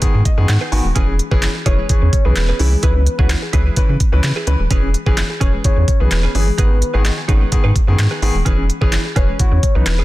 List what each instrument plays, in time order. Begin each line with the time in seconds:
0.02 sub bass G#2, grand piano D#3 B3 G#4, muted clean electric guitar stroke, kick, closed hi-hat
0.14 sub bass G#2, synth arpeggio sound D#4, muted clean electric guitar stroke
0.25 grand piano D#5, kick, closed hi-hat
0.37 sub bass F#2, grand piano D#3 B3 G#4, muted clean electric guitar stroke
0.48 sub bass G#2, grand piano F#5, muted clean electric guitar stroke, snare, clap, closed hi-hat
0.61 clean electric guitar D#4 G#4 B4, synth arpeggio sound G#5
0.72 sub bass G#1, grand piano D#3 B3 F#4 G#5, synth arpeggio sound D#4, muted clean electric guitar stroke, open hi-hat
0.85 sub bass D#1, synth arpeggio sound G#3, muted clean electric guitar stroke
0.95 sub bass E1, grand piano E3 C#4 G#4, synth arpeggio sound E3, clean electric guitar C#4 G#4 B4, kick, closed hi-hat
1.08 synth arpeggio sound C#4, muted clean electric guitar stroke
1.19 muted clean electric guitar stroke, closed hi-hat
1.31 sub bass F#1, grand piano E3 C#4 G#4, clean electric guitar C#4 G#4 B4, kick
1.42 synth arpeggio sound E4, muted clean electric guitar stroke, snare, clap, closed hi-hat
1.55 synth arpeggio sound G#4, muted clean electric guitar stroke
1.66 sub bass E1, grand piano E3 C#4 E4, clean electric guitar C#4 G#4 B4, synth arpeggio sound C#4, soft synth lead C#5, kick, closed hi-hat
1.78 synth arpeggio sound G#3, clean electric guitar C#4 G#4 B4
1.89 sub bass E2, grand piano E3 C#4 G#4, soft synth lead C#5, kick, closed hi-hat
2.02 sub bass E2, synth arpeggio sound C#4, muted clean electric guitar stroke
2.13 kick, closed hi-hat
2.25 sub bass B1, grand piano E3 C#4 G#4, soft synth lead B4, muted clean electric guitar stroke
2.36 sub bass E1, muted clean electric guitar stroke, snare, clap, closed hi-hat
2.49 clean electric guitar C#4 G#4 B4, synth arpeggio sound G#4
2.59 sub bass C2, grand piano E3 C#4 E4, synth arpeggio sound C#4, soft synth lead G#4, muted clean electric guitar stroke, open hi-hat
2.72 synth arpeggio sound G#3, muted clean electric guitar stroke
2.83 sub bass C#2, grand piano E3 C#4 B4, synth arpeggio sound E3, clean electric guitar E4 G#4 B4, soft synth lead B4, kick, closed hi-hat
2.95 synth arpeggio sound C#4, muted clean electric guitar stroke
3.06 muted clean electric guitar stroke, closed hi-hat
3.19 sub bass C#2, grand piano E3 C#4 F#4, clean electric guitar E4 G#4 B4, kick
3.29 synth arpeggio sound E4, muted clean electric guitar stroke, snare, clap, closed hi-hat
3.42 synth arpeggio sound G#4, muted clean electric guitar stroke
3.53 sub bass C#2, grand piano E3 C#4 B4, synth arpeggio sound C#4, clean electric guitar E4 G#4 B4, kick, closed hi-hat
3.65 synth arpeggio sound G#3, clean electric guitar E4 G#4 B4
3.76 sub bass C#3, grand piano E3 C#4 B4, muted clean electric guitar stroke, kick, closed hi-hat
3.89 sub bass C#3, synth arpeggio sound C#4, muted clean electric guitar stroke
4.00 kick, closed hi-hat
4.12 sub bass C#2, grand piano E3 C#4 B4, muted clean electric guitar stroke
4.23 sub bass C#3, muted clean electric guitar stroke, snare, clap, closed hi-hat
4.36 clean electric guitar E4 G#4 B4, synth arpeggio sound G#4
4.47 sub bass C#2, grand piano E3 C#4 B4, synth arpeggio sound C#4, closed hi-hat
4.60 sub bass D#1, synth arpeggio sound G#3, muted clean electric guitar stroke
4.70 sub bass E1, grand piano E3 C#4 G#4, synth arpeggio sound E3, clean electric guitar C#4 G#4 B4, kick, closed hi-hat
4.83 synth arpeggio sound C#4, muted clean electric guitar stroke
4.94 muted clean electric guitar stroke, closed hi-hat
5.06 sub bass F#1, grand piano E3 C#4 G#4, clean electric guitar C#4 G#4 B4, kick
5.17 synth arpeggio sound E4, snare, clap, closed hi-hat
5.30 synth arpeggio sound G#4, muted clean electric guitar stroke
5.41 sub bass E1, grand piano E3 C#4 G#4, clean electric guitar C#4 G#4 B4, synth arpeggio sound C#4, soft synth lead C#5, kick, closed hi-hat
5.53 synth arpeggio sound G#3, clean electric guitar C#4 G#4 B4
5.64 sub bass E2, grand piano E3 C#4 G#4, soft synth lead C#5, muted clean electric guitar stroke, kick, closed hi-hat
5.77 sub bass E2, synth arpeggio sound C#4, muted clean electric guitar stroke
5.88 kick, closed hi-hat
6.00 sub bass B1, grand piano E3 C#4 G#4, soft synth lead B4, muted clean electric guitar stroke
6.11 sub bass E1, muted clean electric guitar stroke, snare, clap, closed hi-hat
6.23 clean electric guitar C#4 G#4 B4, synth arpeggio sound G#4
6.35 sub bass G1, grand piano E3 C#4 G#4, synth arpeggio sound C#4, soft synth lead G#4, muted clean electric guitar stroke, open hi-hat
6.47 synth arpeggio sound G#3, muted clean electric guitar stroke
6.58 sub bass G#1, grand piano D#3 B3 G#4, synth arpeggio sound D#3, clean electric guitar D#4 G#4 B4, soft synth lead B4, kick, closed hi-hat
6.70 synth arpeggio sound D#4, muted clean electric guitar stroke
6.81 muted clean electric guitar stroke, closed hi-hat
6.94 sub bass G#1, grand piano D#3 B3 G#4, clean electric guitar D#4 G#4 B4
7.05 synth arpeggio sound D#5, snare, clap, closed hi-hat
7.17 synth arpeggio sound G#5, muted clean electric guitar stroke
7.28 sub bass G#1, grand piano D#3 B3 C#4, clean electric guitar D#4 G#4 B4, synth arpeggio sound D#4, kick, closed hi-hat
7.41 synth arpeggio sound G#3, clean electric guitar D#4 G#4 B4
7.52 sub bass G#2, grand piano D#3 B3 G#4, muted clean electric guitar stroke, kick, closed hi-hat
7.64 sub bass G#2, synth arpeggio sound D#4, clean electric guitar D#4 G#4 B4
7.75 muted clean electric guitar stroke, kick, closed hi-hat
7.88 sub bass F#2, grand piano D#3 B3 G#4, muted clean electric guitar stroke
7.99 sub bass G#2, muted clean electric guitar stroke, snare, clap, closed hi-hat
8.11 clean electric guitar D#4 G#4 B4, synth arpeggio sound G#5
8.22 sub bass G#1, grand piano D#3 B3 G#4, synth arpeggio sound D#4, muted clean electric guitar stroke, open hi-hat
8.35 sub bass D#1, synth arpeggio sound G#3, muted clean electric guitar stroke
8.45 sub bass E1, grand piano E3 C#4 G#4, synth arpeggio sound E3, clean electric guitar C#4 G#4 B4, kick, closed hi-hat
8.58 synth arpeggio sound C#4, muted clean electric guitar stroke
8.69 muted clean electric guitar stroke, closed hi-hat
8.81 sub bass F#1, grand piano E3 C#4 G#4, clean electric guitar C#4 G#4 B4, kick
8.92 synth arpeggio sound E4, muted clean electric guitar stroke, snare, clap, closed hi-hat
9.05 synth arpeggio sound G#4, muted clean electric guitar stroke
9.16 sub bass E1, grand piano E3 C#4 G#4, clean electric guitar C#4 G#4 B4, synth arpeggio sound C#4, soft synth lead C#5, kick, closed hi-hat
9.28 synth arpeggio sound G#3, clean electric guitar C#4 G#4 B4
9.39 sub bass E2, grand piano E3 C#4 F#4, soft synth lead C#5, muted clean electric guitar stroke, kick, closed hi-hat
9.52 sub bass E2, synth arpeggio sound C#4, muted clean electric guitar stroke
9.63 kick, closed hi-hat
9.75 sub bass B1, grand piano E3 C#4 D#4, soft synth lead B4, muted clean electric guitar stroke
9.86 sub bass E1, muted clean electric guitar stroke, snare, clap, closed hi-hat
9.99 clean electric guitar C#4 G#4 B4, synth arpeggio sound G#4